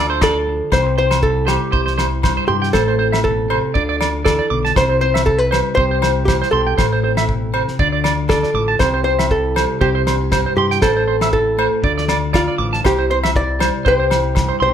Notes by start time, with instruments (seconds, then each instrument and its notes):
Already playing: fingered electric bass D2, clean electric guitar D3 F3 F4 A4
0.10 clean electric guitar C5
0.21 hollow-body jazz guitar A4, clean electric guitar D5, kick, snare, low agogo
0.47 clean electric guitar F3 D4
0.72 fingered electric bass C2, clean electric guitar C3 G3 C4 E4 G4 C5, hollow-body jazz guitar C5, kick, snare, low agogo
0.87 muted clean electric guitar stroke
0.98 clean electric guitar C4 C5, hollow-body jazz guitar C5
1.11 clean electric guitar C5, snare, low agogo
1.23 clean electric guitar E4, hollow-body jazz guitar A4, kick
1.47 clean electric guitar G3 C5, hollow-body jazz guitar G4, snare, low agogo
1.72 fingered electric bass C2, clean electric guitar E4 C5, kick
1.86 clean electric guitar C5, snare
1.98 clean electric guitar E4 C5, snare, low agogo
2.23 clean electric guitar G2 C5, kick, snare, low agogo
2.37 clean electric guitar C5
2.48 fingered electric bass G2, clean electric guitar E4 C6, hollow-body jazz guitar G4
2.62 clean electric guitar G5, snare
2.73 fingered electric bass A1, clean electric guitar A2 A3 C4 E4 C5, hollow-body jazz guitar A4, kick, snare, low agogo
2.88 clean electric guitar C5
2.99 clean electric guitar C4 C5
3.12 clean electric guitar E5, snare, low agogo
3.24 clean electric guitar B2, hollow-body jazz guitar A4, kick
3.50 clean electric guitar C3 C5, low agogo
3.74 fingered electric bass D2, clean electric guitar D3 F4 D5, kick
3.89 clean electric guitar D5
4.01 clean electric guitar D4 D5, snare, low agogo
4.25 clean electric guitar E3 D5, hollow-body jazz guitar A4, kick, snare, low agogo
4.39 clean electric guitar D5
4.50 fingered electric bass B1, clean electric guitar D3 D6
4.65 clean electric guitar A5, snare
4.76 fingered electric bass C2, clean electric guitar C3 E4 C5, hollow-body jazz guitar C5, kick, snare, low agogo
4.89 clean electric guitar C5
5.01 clean electric guitar C4 C5, hollow-body jazz guitar C5
5.14 clean electric guitar E5, snare, low agogo
5.26 clean electric guitar E4, hollow-body jazz guitar A4, kick
5.38 hollow-body jazz guitar B4
5.51 clean electric guitar G3 C5, snare, low agogo
5.75 fingered electric bass C2, clean electric guitar G4 C5, hollow-body jazz guitar C5, kick
5.91 clean electric guitar C5
6.02 clean electric guitar E4 C5, snare, low agogo
6.25 hollow-body jazz guitar G4, clean electric guitar C5, muted clean electric guitar stroke, kick, snare, low agogo
6.42 clean electric guitar C5, snare
6.51 fingered electric bass B1, clean electric guitar G4 C6, hollow-body jazz guitar A4
6.67 clean electric guitar G5
6.78 fingered electric bass A1, clean electric guitar A2 E4 C5, kick, snare, low agogo
6.93 clean electric guitar C5
7.04 clean electric guitar C4 C5
7.17 clean electric guitar E5, snare, low agogo
7.29 clean electric guitar B2, kick
7.54 clean electric guitar C3 C5, low agogo
7.68 snare
7.79 fingered electric bass D2, clean electric guitar D3 F4 D5, kick
7.92 clean electric guitar D5
8.04 clean electric guitar D4 D5, snare, low agogo
8.29 clean electric guitar D4 D5, hollow-body jazz guitar A4, kick, snare, low agogo
8.43 clean electric guitar F4 D5, snare
8.54 fingered electric bass A1, clean electric guitar F3 D6
8.68 clean electric guitar A5
8.79 fingered electric bass C2, clean electric guitar C3 G3 C4 E4 C5, hollow-body jazz guitar C5, kick, snare, low agogo
8.84 clean electric guitar G4
8.94 clean electric guitar C5
9.04 clean electric guitar C4 C5, hollow-body jazz guitar C5
9.19 clean electric guitar E5, snare, low agogo
9.31 clean electric guitar E4, hollow-body jazz guitar A4, kick
9.56 clean electric guitar G3 C5, snare, low agogo
9.81 fingered electric bass C2, clean electric guitar E4 C5, hollow-body jazz guitar G4, kick
9.95 clean electric guitar C5
10.06 clean electric guitar D4 C5, snare, low agogo
10.21 clean electric guitar E4
10.31 clean electric guitar G2 C5, kick, snare, low agogo
10.46 clean electric guitar C5
10.56 fingered electric bass G2, clean electric guitar E4 C6, hollow-body jazz guitar G4
10.71 clean electric guitar G5, snare
10.82 fingered electric bass A1, clean electric guitar A2 D4 C5, hollow-body jazz guitar A4, kick, snare, low agogo
10.97 clean electric guitar E4 C5
11.07 clean electric guitar C4 C5
11.21 clean electric guitar E5, snare, low agogo
11.32 clean electric guitar E4, hollow-body jazz guitar A4, kick
11.57 clean electric guitar A3 C5, low agogo
11.82 fingered electric bass D2, clean electric guitar D3 F4 D5, kick
11.98 clean electric guitar D5, snare
12.08 clean electric guitar D4 D5, snare, low agogo
12.33 clean electric guitar D4 D5, hollow-body jazz guitar F4, kick, snare, low agogo
12.48 clean electric guitar D5
12.58 fingered electric bass A1, clean electric guitar F3 D6
12.73 clean electric guitar A5, snare
12.84 fingered electric bass C2, clean electric guitar C3 E4 C5, hollow-body jazz guitar G4, kick, snare, low agogo
12.99 clean electric guitar C5
13.10 clean electric guitar C4 C5, hollow-body jazz guitar C5
13.23 clean electric guitar E5, snare, low agogo
13.36 clean electric guitar E4, hollow-body jazz guitar D5, kick
13.60 clean electric guitar G3 C5, snare, low agogo
13.85 fingered electric bass C2, clean electric guitar G4 C5, hollow-body jazz guitar C5, kick
14.00 clean electric guitar C5
14.10 clean electric guitar E4 C5, snare, low agogo
14.35 clean electric guitar G2, muted clean electric guitar stroke, kick, snare, low agogo
14.49 clean electric guitar C5
14.60 fingered electric bass B1, clean electric guitar G4 C6, hollow-body jazz guitar C5